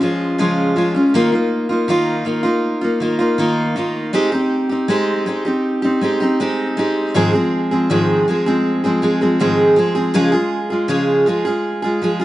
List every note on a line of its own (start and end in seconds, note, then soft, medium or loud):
0.01 0.38 F3 medium
0.01 0.38 G#3 medium
0.01 0.39 C#4 medium
0.01 0.39 F4 medium
0.38 0.76 C#3 medium
0.38 0.75 F3 medium
0.38 0.75 G#3 medium
0.38 0.77 C#4 medium
0.38 0.77 F4 medium
0.76 0.95 F3 medium
0.76 0.95 G#3 medium
0.76 0.95 C#4 medium
0.76 0.93 F4 medium
0.94 1.15 G#3 soft
0.94 1.14 C#4 medium
0.94 1.14 F4 medium
1.14 1.33 D#3 medium
1.14 1.33 A#3 medium
1.14 1.32 D#4 medium
1.14 1.31 F4 medium
1.32 1.71 A#3 soft
1.32 1.70 D#4 medium
1.32 1.68 F4 medium
1.69 1.88 A#3 soft
1.69 1.88 D#4 soft
1.69 1.88 F4 soft
1.88 2.24 D#3 medium
1.88 2.25 A#3 medium
1.88 2.25 D#4 medium
1.88 2.27 F4 medium
2.25 2.44 D#3 medium
2.25 2.45 A#3 medium
2.25 2.44 D#4 medium
2.25 2.42 F4 medium
2.43 2.83 A#3 soft
2.43 2.82 D#4 medium
2.43 2.80 F4 medium
2.81 3.00 A#3 medium
2.81 3.01 D#4 medium
2.81 3.01 F4 medium
3.00 3.20 D#3 medium
3.00 3.20 A#3 medium
3.00 3.19 D#4 medium
3.00 3.18 F4 medium
3.19 3.38 A#3 soft
3.19 3.38 D#4 medium
3.19 3.38 F4 medium
3.38 3.74 D#3 medium
3.38 3.76 A#3 medium
3.38 3.77 D#4 medium
3.38 3.77 F4 medium
3.76 4.13 D#3 medium
3.76 4.13 A#3 medium
3.76 4.13 D#4 medium
3.76 4.14 F4 medium
4.13 4.32 G#3 medium
4.13 4.32 C4 medium
4.13 4.32 D#4 loud
4.13 4.31 G4 medium
4.32 4.71 C4 medium
4.32 4.70 D#4 soft
4.32 4.68 G4 medium
4.69 4.88 C4 soft
4.69 4.89 D#4 medium
4.69 4.88 G4 soft
4.88 5.25 G#3 medium
4.88 5.26 C4 medium
4.88 5.27 D#4 medium
4.88 5.27 G4 loud
5.26 5.45 G#3 medium
5.26 5.46 C4 medium
5.26 5.45 D#4 medium
5.26 5.44 G4 medium
5.45 5.84 C4 soft
5.45 5.83 D#4 medium
5.45 5.81 G4 medium
5.82 6.01 C4 medium
5.82 6.02 D#4 medium
5.82 6.01 G4 medium
6.01 6.20 G#3 medium
6.01 6.21 C4 medium
6.01 6.21 D#4 medium
6.01 6.19 G4 medium
6.20 6.39 C4 medium
6.20 6.40 D#4 medium
6.20 6.39 G4 medium
6.40 6.76 G#3 medium
6.40 6.77 C4 medium
6.40 6.78 D#4 medium
6.40 6.78 G4 loud
6.77 7.14 G#3 medium
6.77 7.15 C4 medium
6.77 7.15 D#4 medium
6.77 7.16 G4 medium
7.14 7.33 G#2 medium
7.14 7.33 D#3 medium
7.14 7.33 F3 medium
7.14 7.33 G#3 medium
7.14 7.33 C4 loud
7.14 7.32 G#4 loud
7.33 7.72 F3 soft
7.33 7.72 G#3 medium
7.33 7.71 C4 medium
7.33 7.70 G#4 medium
7.71 7.90 F3 soft
7.71 7.90 G#3 soft
7.71 7.90 C4 medium
7.71 7.89 G#4 medium
7.90 8.27 G#2 medium
7.90 8.27 D#3 medium
7.90 8.27 F3 medium
7.90 8.27 G#3 medium
7.90 8.28 C4 medium
7.90 8.28 G#4 medium
8.28 8.46 F3 medium
8.28 8.46 G#3 medium
8.28 8.46 C4 medium
8.28 8.45 G#4 medium
8.46 8.85 F3 soft
8.46 8.84 G#3 medium
8.46 8.84 C4 medium
8.46 8.83 G#4 medium
8.84 9.01 F3 medium
8.84 9.02 G#3 medium
8.84 9.02 C4 medium
8.84 9.02 G#4 medium
9.02 9.20 F3 medium
9.02 9.21 G#3 medium
9.02 9.21 C4 medium
9.02 9.20 G#4 medium
9.21 9.39 F3 medium
9.21 9.40 G#3 medium
9.21 9.40 C4 medium
9.21 9.39 G#4 medium
9.40 9.77 G#2 medium
9.40 9.77 D#3 medium
9.40 9.75 F3 medium
9.40 9.76 G#3 medium
9.40 9.77 C4 medium
9.40 9.78 G#4 medium
9.76 9.95 F3 medium
9.76 9.95 G#3 medium
9.76 9.95 C4 medium
9.76 9.94 G#4 medium
9.95 10.13 F3 soft
9.95 10.13 G#3 soft
9.95 10.14 C4 medium
9.95 10.14 G#4 medium
10.14 10.33 C#3 medium
10.14 10.33 F3 medium
10.14 10.33 G#3 loud
10.14 10.32 F4 loud
10.14 10.31 G#4 medium
10.32 10.71 G#3 soft
10.32 10.71 F4 medium
10.32 10.69 G#4 medium
10.70 10.88 G#3 soft
10.70 10.89 F4 soft
10.70 10.89 G#4 medium
10.88 11.26 C#3 medium
10.88 11.25 F3 medium
10.88 11.26 G#3 medium
10.88 11.27 F4 medium
10.88 11.27 G#4 medium
11.26 11.45 F3 medium
11.26 11.45 G#3 medium
11.26 11.46 F4 medium
11.26 11.44 G#4 medium
11.45 11.84 G#3 medium
11.45 11.83 F4 medium
11.45 11.81 G#4 medium
11.82 12.01 G#3 soft
11.82 12.02 F4 medium
11.82 12.01 G#4 medium
12.02 12.20 F3 medium
12.02 12.21 G#3 medium
12.02 12.20 F4 medium
12.02 12.18 G#4 medium
12.20 12.25 F4 medium
12.20 12.25 G#4 medium